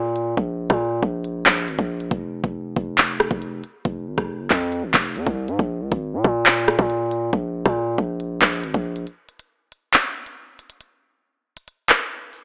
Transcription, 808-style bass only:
0.00 0.35 A#2 loud
0.37 0.69 A#1 loud
0.70 1.01 A#2 loud
1.03 1.44 A#1 loud
1.46 1.69 A#1 loud
1.68 1.78 G#1 loud
1.79 2.10 A#1 loud
2.11 2.43 F1 loud
2.44 2.75 F1 loud
2.76 3.29 F1 loud
3.31 3.62 F1 loud
3.85 4.08 F1 loud
4.07 4.17 G#1 loud
4.18 4.41 F1 loud
4.40 4.50 G1 loud
4.50 4.85 F2 loud
4.83 4.93 G#1 loud
4.94 5.17 F1 loud
5.16 5.26 F2 loud
5.27 5.50 C2 loud
5.48 5.58 G#2 loud
5.59 5.82 A#1 loud
5.81 5.91 C#2 medium
5.92 6.15 G#1 loud
6.14 6.24 A#2 loud
6.24 6.77 A#2 loud
6.79 7.31 A#2 loud
7.33 7.64 A#1 loud
7.66 7.97 A#2 loud
7.98 8.40 A#1 loud
8.42 8.65 A#1 loud
8.63 8.74 G#1 loud
8.74 9.06 A#1 loud

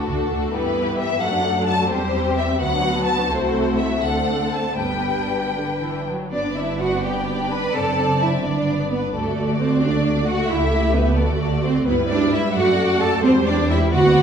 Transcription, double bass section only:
0.08 0.16 D2 soft
0.31 0.39 D2 soft
0.54 1.18 G2 medium
1.22 1.89 F#2 medium
1.90 2.60 E2 medium
2.61 3.30 D2 medium
3.30 3.99 C2 medium
4.03 4.77 D2 soft
4.78 6.08 G1 soft
6.32 7.70 G1 medium
7.75 8.43 F#1 medium
8.45 9.12 G1 medium
9.14 10.50 D2 medium
10.50 11.18 C#2 medium
11.18 11.87 D2 medium
11.87 12.54 G2 medium
12.55 13.24 F#2 medium
13.24 13.92 E2 medium
13.93 14.22 D2 medium

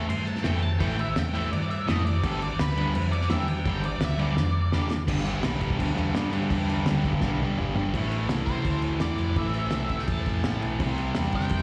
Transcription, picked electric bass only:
0.09 0.44 G2 medium
0.45 0.79 F2 medium
0.81 1.15 A1 loud
1.17 1.51 E2 loud
1.53 1.87 G2 medium
1.88 2.23 F2 loud
2.24 2.58 G1 loud
2.60 2.94 D2 medium
2.95 3.29 F2 medium
3.30 3.65 E2 medium
3.66 4.00 G1 loud
4.02 4.36 D2 medium
4.38 4.72 F2 medium
4.74 5.08 E2 medium
5.09 5.41 G1 loud
5.44 5.77 B1 medium
5.80 5.96 D2 medium
5.96 6.13 E2 loud
6.14 6.47 G2 medium
6.51 6.83 E2 loud
6.86 7.19 D2 medium
7.22 7.55 B1 medium
7.57 7.74 G1 medium
7.76 7.92 G1 medium
7.94 8.27 A1 loud
8.29 8.62 C2 loud
8.65 8.98 D2 medium
9.00 9.17 E2 medium
9.19 9.35 F2 medium
9.37 9.69 A1 loud
9.73 10.05 C2 loud
10.08 10.24 E2 medium
10.26 10.43 F2 loud
10.46 10.61 A2 medium
10.64 10.79 B1 medium
10.81 11.13 C2 loud
11.16 11.49 E2 loud
11.51 11.62 F2 medium

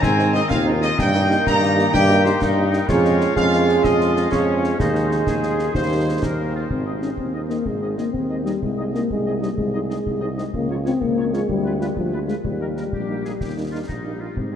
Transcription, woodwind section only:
0.02 0.46 C4 medium
0.50 0.98 F4 loud
0.98 1.93 D#4 medium
1.94 2.38 G4 loud
2.42 2.86 D#4 medium
2.90 4.28 F4 loud
4.31 4.76 C#4 medium
4.79 5.21 D#4 medium
5.27 5.72 G#4 medium
5.75 6.20 C5 loud
6.23 6.55 A#4 medium
6.55 6.62 F4 medium
6.86 6.92 G#4 soft
6.86 6.92 D#5 soft
7.02 7.08 G#4 soft
7.02 7.08 D#5 soft
7.34 7.40 G#4 soft
7.34 7.40 D#5 soft
7.50 7.56 G#4 soft
7.50 7.56 D#5 soft
7.82 7.88 G#4 soft
7.82 7.88 D#5 soft
7.97 8.03 G#4 soft
7.97 8.03 D#5 soft
8.30 8.36 G#4 soft
8.30 8.36 D#5 soft
8.45 8.51 G#4 soft
8.45 8.51 D#5 soft
8.78 8.84 G#4 soft
8.78 8.84 D#5 soft
8.95 9.01 G#4 soft
8.95 9.01 D#5 soft
9.26 9.32 G#4 soft
9.26 9.32 D#5 soft
9.43 9.48 G#4 soft
9.43 9.48 D#5 soft
9.74 9.80 G#4 soft
9.74 9.79 D#5 soft
9.90 9.95 G#4 soft
9.90 9.95 D#5 medium
10.21 10.27 G#4 soft
10.21 10.27 D#5 soft
10.37 10.44 G#4 soft
10.37 10.43 D#5 medium
10.70 10.76 F4 soft
10.70 10.76 C#5 soft
10.86 10.91 F4 medium
10.86 10.91 C#5 soft
11.18 11.23 F4 soft
11.18 11.24 C#5 soft
11.35 11.40 F4 soft
11.35 11.40 C#5 soft
11.66 11.71 F4 soft
11.66 11.71 B4 soft
11.81 11.87 F4 soft
11.81 11.87 B4 soft
12.13 12.18 F4 soft
12.13 12.19 B4 soft
12.29 12.35 F4 soft
12.29 12.35 B4 soft
12.61 12.66 D#4 soft
12.61 12.67 A#4 soft
12.77 12.83 D#4 soft
12.77 12.82 A#4 soft
12.94 13.23 G4 medium
13.25 13.32 G#4 soft
13.40 13.55 G4 soft
13.71 13.79 F4 soft
13.87 14.17 D#4 soft
14.20 14.36 F4 soft

